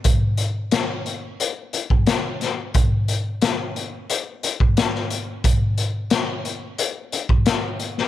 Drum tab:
HH |x-x-x-x-x-x-x-x-|x-x-x-x-x-x-x-x-|x-x-x-x-x-x-x-x-|
SD |----o-------o-o-|----o-------oo--|----o-------o--o|
BD |o----------o----|o----------o----|o----------o----|